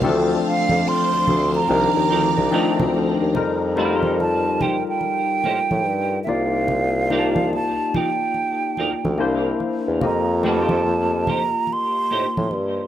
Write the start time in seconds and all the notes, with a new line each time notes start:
Already playing: F5 A5
0.02 D2 E3 A3 C4 D4 A4 C5, muted conga, low conga
0.08 F3
0.48 F5
0.69 F2, high conga
0.87 C6, muted conga
1.12 D2
1.27 D2, high conga, low conga
1.55 A#5
1.68 C2 D#3 F3 C4 D4 D#4 A#4 D5 A#5, muted conga
1.96 D#2
2.10 D2 D#4 F4 A#4 D5
2.37 C2, high conga
2.51 F3 A3 C4 D4 D#4 F4 A#4 D5, muted conga
2.79 D2, high conga, low conga
2.94 D2, muted conga
3.21 D#2
3.34 F2 G3 D#4 F4 A#4, muted conga, low conga
3.76 G3 A3 D4 D#4 F4 F#4 A4 B4, muted conga
3.85 A#4
3.93 A#3 D#4 G4 C5
4.03 high conga
4.20 A5, muted conga
4.60 A#3 D#4 G4 C5 G5, muted conga, high conga, low conga
4.88 G5
5.01 muted conga
5.44 A2 A#3 D#4 G4 C5, muted conga
5.71 A2, high conga
5.87 G2
6.24 A#3 D#4 F4 E5, muted conga
6.28 C2 D5 F5
6.68 muted conga, low conga
7.09 A#3 D#4 F4 G4 A#4 D5, muted conga
7.19 A5
7.36 high conga
7.53 A5, muted conga
7.94 D#4 F4 A#4 D5 G5, muted conga, high conga, low conga
8.34 muted conga
8.77 D2 D#4 F4 A#4 D5, muted conga
9.04 D2, high conga
9.18 C2 A#3 D4 E4 C5, muted conga
9.60 muted conga
9.88 E2
10.01 F2 A#3 F4 G4 D#5 A#5, muted conga, low conga
10.43 A3 A#3 D4 F4 F#4 G4 A#4 B4, muted conga
10.47 A5
10.60 A#3 D#4 G4 C5
10.69 high conga
11.27 A#3 D#4 G4 C5 A#5, muted conga, high conga, low conga
11.67 muted conga
11.73 C6
12.11 A2 A#3 D#4 G4 C5
12.37 A2, high conga
12.51 G2, muted conga